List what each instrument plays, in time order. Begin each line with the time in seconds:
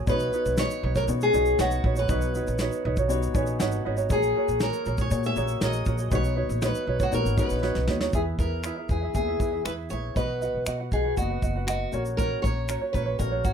0.06 upright bass B1, upright piano B3 D#4 F#4 C#5, ukulele D#4 F#4 B4 C#5, steel-string acoustic guitar B4, kick, shaker
0.20 shaker
0.33 ukulele D#4 F#4 B4 C#5, shaker
0.45 upright bass B1, shaker
0.57 ukulele D#4 F#4 B4 C#5, steel-string acoustic guitar C#5, snare, shaker
0.71 shaker
0.83 upright bass B1, ukulele D#4 F#4 B4 C#5
0.95 ukulele D#4 F#4 C#5, steel-string acoustic guitar A#4, kick, snare, shaker
1.08 upright bass B2, upright piano B3 D#4 F#4 C#5, shaker
1.21 steel-string acoustic guitar G#4, shaker
1.32 upright bass B1, upright piano B3 D#4 F#4 C#5, ukulele D#4 F#4 B4 C#5, shaker
1.45 shaker
1.59 upright bass B1, ukulele D#4 F#4 B4 C#5, steel-string acoustic guitar F#4, snare, shaker
1.71 shaker
1.84 upright bass A#1, ukulele D#4 F#4 B4 C#5, kick
1.96 ukulele D#4 F#4 C#5, steel-string acoustic guitar B4, shaker
2.08 upright bass B1, upright piano B3 D#4 F#4 C#5, ukulele D#4 F#4 B4 C#5, kick, shaker
2.21 shaker
2.35 ukulele D#4 F#4 B4 C#5, shaker
2.47 upright bass A#1, shaker
2.59 ukulele D#4 F#4 B4 C#5, snare, shaker
2.72 shaker
2.85 upright bass B1, ukulele D#4 F#4 B4 C#5
2.97 ukulele D#4 F#4 C#5, kick, shaker
3.08 upright piano B3 D#4 F#4 C#5, shaker
3.23 shaker
3.34 upright bass A#1, upright piano B3 D#4 F#4 C#5 G#5, ukulele D#4 F#4 B4 C#5, kick, shaker
3.47 shaker
3.59 upright bass G#1, ukulele D#4 F#4 B4 C#5, upright piano F#5, snare, shaker
3.72 shaker
3.85 upright bass G#1, ukulele D#4 F#4 B4 C#5, upright piano D#5
3.97 ukulele D#4 F#4 C#5, shaker
4.09 upright bass A#1, upright piano A#3 F#4 G#4 C#5, ukulele F#4 G#4 A#4 C#5, steel-string acoustic guitar G#4, kick, shaker
4.23 shaker
4.36 ukulele F#4 G#4 A#4 C#5
4.48 upright bass A#1, shaker
4.60 ukulele F#4 G#4 A#4 C#5, steel-string acoustic guitar A#4, snare, shaker
4.73 shaker
4.86 upright bass A#1, ukulele F#4 G#4 A#4 C#5, shaker
4.98 ukulele F#4 G#4 C#5, steel-string acoustic guitar C#5, kick, snare, shaker
5.09 upright bass A#2, upright piano A#3 F#4 G#4 C#5, shaker
5.24 steel-string acoustic guitar E5, shaker
5.35 upright bass A#1, upright piano A#3 F#4 G#4 C#5, ukulele F#4 G#4 A#4 C#5, shaker
5.48 shaker
5.61 upright bass A#1, ukulele F#4 G#4 A#4 C#5, snare, shaker
5.65 steel-string acoustic guitar D#5
5.73 shaker
5.85 upright bass A#1, ukulele F#4 G#4 A#4 C#5, kick, shaker
5.98 ukulele F#4 G#4 C#5, shaker
6.10 upright bass B1, upright piano B3 D#4 F#4 C#5, ukulele D#4 F#4 B4 C#5, kick, shaker
6.15 steel-string acoustic guitar C#5
6.24 shaker
6.36 ukulele D#4 F#4 B4 C#5
6.49 upright bass A#1, shaker
6.61 ukulele D#4 F#4 B4 C#5, snare, shaker
6.66 steel-string acoustic guitar B4
6.75 shaker
6.87 upright bass B1, ukulele D#4 F#4 B4 C#5
7.00 ukulele D#4 F#4 C#5, steel-string acoustic guitar F#4, kick, snare, shaker
7.11 upright bass A#1, upright piano B3 D#4 F#4 C#5, steel-string acoustic guitar A#4, shaker
7.25 upright bass G#1, shaker
7.36 upright piano B3 D#4 F#4 C#5, ukulele D#4 F#4 B4 C#5, steel-string acoustic guitar B4, kick, shaker
7.50 upright bass A#1, shaker
7.62 ukulele D#4 F#4 B4 C#5, snare
7.75 upright bass B1, snare
7.87 upright bass D#2, ukulele D#4 F#4 B4 C#5, snare
8.01 ukulele D#4 F#4 C#5, snare
8.13 upright bass E2, upright piano B3 G#4 E5, ukulele E4 G#4 B4 E5, steel-string acoustic guitar G#4, kick, shaker
8.39 upright bass E2, ukulele E4 G#4 B4 E5, steel-string acoustic guitar A#4, kick, shaker
8.63 ukulele E4 G#4 B4 E5, finger snap, shaker
8.77 ukulele E4 G#4 E5
8.89 upright bass E2, ukulele E4 G#4 B4 E5, steel-string acoustic guitar G#4, kick, shaker
9.03 ukulele E4 G#4 E5
9.13 upright bass D#2, upright piano B3 G#4 E5, steel-string acoustic guitar G#4, kick, shaker
9.28 ukulele E4 G#4 E5
9.40 upright bass E2, ukulele E4 G#4 B4 E5, kick, shaker
9.52 ukulele E4 G#4 E5
9.65 upright bass E2, ukulele E4 G#4 B4 E5, steel-string acoustic guitar B4, finger snap, shaker
9.90 upright bass A#1, ukulele E4 G#4 B4 E5, steel-string acoustic guitar C#5, shaker
10.15 upright bass B1, upright piano B3 F#4 D#5, ukulele F#4 B4 D#5 F#5, steel-string acoustic guitar B4, kick, shaker
10.41 ukulele F#4 B4 D#5 F#5, shaker
10.54 upright bass B1
10.66 upright bass B2, ukulele F#4 B4 D#5 F#5, finger snap, shaker
10.80 ukulele F#4 B4 F#5
10.92 upright bass B1, ukulele F#4 B4 D#5 F#5, steel-string acoustic guitar G#4, kick, shaker
11.04 ukulele F#4 B4 F#5
11.16 upright bass F#1, upright piano B3 F#4 D#5, steel-string acoustic guitar F#4, kick, shaker
11.30 ukulele F#4 B4 F#5
11.42 upright bass F#1, ukulele F#4 B4 D#5 F#5, kick, shaker
11.56 ukulele F#4 B4 F#5
11.67 steel-string acoustic guitar F#4, ukulele F#4 B4 D#5 F#5, finger snap, shaker
11.92 upright bass A#1, upright piano A#3 F#4 C#5, ukulele C#4 F#4 A#4, shaker
11.96 ukulele C#5
12.05 shaker
12.17 ukulele C#4 F#4 A#4 C#5, steel-string acoustic guitar A#4, kick, shaker
12.42 upright bass A#1, ukulele C#4 F#4 A#4, steel-string acoustic guitar C#5, kick, shaker
12.46 ukulele C#5
12.69 ukulele C#4 F#4 A#4 C#5, finger snap, shaker
12.81 ukulele C#4 F#4 C#5
12.93 upright bass A#1, ukulele C#4 F#4 A#4 C#5, steel-string acoustic guitar B4, kick, shaker
13.06 ukulele C#4 F#4 C#5
13.18 upright bass A#1, upright piano A3 F#4 C#5, steel-string acoustic guitar A#4, kick, shaker
13.24 upright piano A#3
13.31 ukulele C#4 F#4 C#5
13.44 upright bass G#1, ukulele C#4 F#4 A#4 C#5, steel-string acoustic guitar F#4, kick, shaker